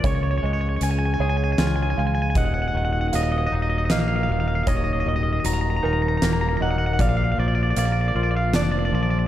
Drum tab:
HH |x-x-x-|x-x-x-|x-x-x-|x-x-x-|
SD |----o-|----o-|----o-|----o-|
BD |o-----|o-----|o-----|o-----|